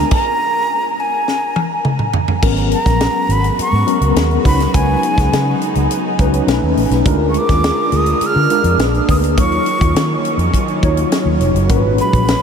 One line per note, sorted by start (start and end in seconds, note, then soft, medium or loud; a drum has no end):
0.00 0.11 A#2 medium
0.00 0.11 G#3 medium
0.00 0.13 G#3 medium
0.00 0.12 B3 medium
0.00 0.12 D4 medium
0.00 0.12 A#4 medium
0.00 0.12 A#5 medium
0.11 1.02 A#5 loud
0.11 kick loud
0.11 crash medium
1.00 1.86 G#5 medium
1.28 snare medium
1.56 high tom medium
1.85 mid tom medium
1.99 mid tom medium
2.13 floor tom loud
2.28 floor tom medium
2.42 2.72 G#1 loud
2.42 3.27 F#3 medium
2.42 6.44 G#3 medium
2.42 3.27 B3 medium
2.42 7.02 B3 medium
2.42 3.27 C#4 medium
2.42 6.44 F#4 medium
2.42 3.27 A#4 medium
2.42 kick loud
2.42 crash loud
2.57 closed hi-hat soft
2.71 3.33 A#5 loud
2.71 closed hi-hat medium
2.86 3.06 A#1 medium
2.86 kick medium
2.86 snare soft
2.86 closed hi-hat medium
3.00 snare loud
3.00 closed hi-hat medium
3.29 3.49 G#1 medium
3.29 3.59 B5 loud
3.29 closed hi-hat medium
3.44 closed hi-hat medium
3.59 4.14 C#6 loud
3.59 muted fingered electric bass stroke soft
3.59 closed hi-hat medium
3.72 3.82 G#2 loud
3.86 4.43 F#3 medium
3.86 4.45 B3 medium
3.86 4.44 C#4 medium
3.86 4.45 A#4 medium
3.86 closed hi-hat medium
4.01 4.11 C#2 medium
4.01 closed hi-hat medium
4.16 snare loud
4.16 closed hi-hat medium
4.31 closed hi-hat soft
4.44 4.65 C#2 loud
4.44 6.46 C#3 medium
4.44 5.37 F#3 medium
4.44 5.38 C#4 medium
4.44 5.38 D#4 medium
4.44 7.04 D#4 medium
4.44 5.38 B4 medium
4.44 4.76 B5 loud
4.44 kick medium
4.44 open hi-hat medium
4.60 snare soft
4.60 closed hi-hat medium
4.74 4.94 C#2 loud
4.74 5.61 G#5 loud
4.74 kick loud
4.74 closed hi-hat medium
5.03 closed hi-hat medium
5.18 5.28 C#2 loud
5.18 kick medium
5.18 snare soft
5.18 closed hi-hat medium
5.32 5.52 C#3 loud
5.32 snare loud
5.32 closed hi-hat medium
5.61 closed hi-hat medium
5.75 5.86 C#2 medium
5.75 closed hi-hat medium
5.91 closed hi-hat loud
6.19 6.39 C#2 medium
6.19 6.48 F#3 loud
6.19 6.47 C#4 medium
6.19 6.48 D#4 medium
6.19 6.48 B4 loud
6.19 kick loud
6.19 closed hi-hat medium
6.34 closed hi-hat medium
6.47 6.57 B1 loud
6.47 6.94 A3 medium
6.47 7.06 A3 medium
6.47 6.94 C#4 medium
6.47 6.95 D#4 medium
6.47 6.95 B4 loud
6.47 snare loud
6.47 closed hi-hat medium
6.62 6.72 D#2 medium
6.76 6.87 A1 medium
6.76 open hi-hat medium
6.90 7.01 B1 medium
6.90 snare soft
6.90 closed hi-hat medium
7.04 7.36 D2 loud
7.04 8.77 D3 medium
7.04 7.90 G#3 medium
7.04 9.35 D4 medium
7.04 7.91 D4 medium
7.04 8.77 F4 medium
7.04 7.91 F4 medium
7.04 8.78 G#4 medium
7.04 8.77 A#4 medium
7.04 7.91 A#4 loud
7.04 kick loud
7.04 closed hi-hat medium
7.30 7.39 C#6 medium
7.34 7.98 D6 loud
7.34 closed hi-hat medium
7.49 7.69 D#2 medium
7.49 kick medium
7.49 snare soft
7.49 closed hi-hat medium
7.64 snare loud
7.64 closed hi-hat medium
7.92 8.12 D2 medium
7.92 closed hi-hat medium
7.96 8.28 D#6 medium
8.06 closed hi-hat medium
8.21 muted fingered electric bass stroke medium
8.21 closed hi-hat medium
8.26 8.82 F6 loud
8.36 8.46 D3 medium
8.50 8.79 G#3 medium
8.50 8.79 D4 medium
8.50 8.80 F4 medium
8.50 8.80 A#4 medium
8.50 closed hi-hat medium
8.64 8.74 F2 loud
8.64 closed hi-hat medium
8.78 8.99 A#1 loud
8.78 9.37 G#3 medium
8.78 11.66 A#3 medium
8.78 9.26 A#3 medium
8.78 9.26 D4 medium
8.78 9.26 G#4 medium
8.78 9.27 B4 medium
8.78 snare loud
8.78 closed hi-hat medium
8.94 closed hi-hat soft
9.09 9.38 D2 medium
9.09 9.17 D#6 loud
9.09 kick medium
9.09 open hi-hat medium
9.24 closed hi-hat medium
9.37 9.58 D#2 loud
9.37 11.68 D#3 medium
9.37 12.42 F#3 medium
9.37 10.22 F#3 medium
9.37 11.67 C#4 medium
9.37 10.22 D#4 medium
9.37 11.68 F4 medium
9.37 10.23 F4 medium
9.37 10.23 C#5 medium
9.37 10.22 C#6 loud
9.37 kick loud
9.37 closed hi-hat medium
9.52 closed hi-hat soft
9.66 closed hi-hat medium
9.81 9.91 D#2 medium
9.81 kick loud
9.81 closed hi-hat medium
9.94 10.15 D#3 loud
9.94 snare loud
9.94 closed hi-hat medium
10.25 closed hi-hat medium
10.37 10.48 F2 medium
10.37 closed hi-hat medium
10.54 kick medium
10.54 closed hi-hat loud
10.68 closed hi-hat soft
10.82 11.03 D#2 medium
10.82 11.46 F#3 medium
10.82 11.46 D#4 medium
10.82 11.47 F4 medium
10.82 11.47 C#5 loud
10.82 kick loud
10.82 closed hi-hat medium
10.97 closed hi-hat medium
11.12 snare loud
11.12 closed hi-hat medium
11.25 11.36 D#2 medium
11.39 11.50 F1 medium
11.39 closed hi-hat medium
11.54 11.69 F#1 loud
11.54 closed hi-hat medium
11.69 12.00 G#1 loud
11.69 12.42 A#2 medium
11.69 12.42 G#3 medium
11.69 12.42 C#4 medium
11.69 12.42 F#4 medium
11.69 11.76 A#4 medium
11.69 12.42 B4 medium
11.69 kick loud
11.69 closed hi-hat medium
11.77 12.42 B4 loud
11.98 12.42 B5 loud
11.98 closed hi-hat medium
12.13 12.33 A#1 medium
12.13 kick medium
12.13 closed hi-hat soft
12.28 snare loud
12.28 closed hi-hat medium